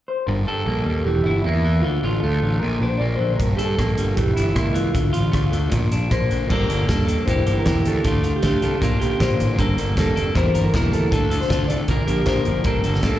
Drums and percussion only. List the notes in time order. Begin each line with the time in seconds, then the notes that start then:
3.40 kick, closed hi-hat
3.59 closed hi-hat
3.79 kick, cross-stick, closed hi-hat
3.98 closed hi-hat
4.17 kick, closed hi-hat
4.37 closed hi-hat
4.56 kick, cross-stick, closed hi-hat
4.75 closed hi-hat
4.95 kick, closed hi-hat
5.14 closed hi-hat
5.33 kick, cross-stick, closed hi-hat
5.53 closed hi-hat
5.72 kick, closed hi-hat
5.92 closed hi-hat
6.11 kick, cross-stick, closed hi-hat
6.31 closed hi-hat
6.50 kick, crash
6.70 closed hi-hat
6.89 kick, snare, closed hi-hat
7.08 closed hi-hat
7.28 kick, closed hi-hat
7.47 closed hi-hat
7.66 kick, snare, closed hi-hat
7.85 closed hi-hat
8.04 kick, closed hi-hat
8.24 closed hi-hat
8.43 kick, snare, closed hi-hat
8.62 closed hi-hat
8.82 kick, closed hi-hat
9.02 closed hi-hat
9.20 kick, snare, closed hi-hat
9.40 closed hi-hat
9.59 kick, closed hi-hat
9.78 closed hi-hat
9.97 kick, snare, closed hi-hat
10.17 closed hi-hat
10.35 kick, closed hi-hat
10.55 closed hi-hat
10.74 kick, snare, closed hi-hat
10.93 closed hi-hat
11.12 kick, closed hi-hat
11.31 closed hi-hat
11.41 snare
11.50 kick, snare, closed hi-hat
11.70 closed hi-hat
11.88 kick, closed hi-hat
12.08 closed hi-hat
12.26 kick, snare, closed hi-hat
12.45 closed hi-hat
12.64 kick, closed hi-hat
12.84 closed hi-hat
12.94 snare
13.03 kick, snare, closed hi-hat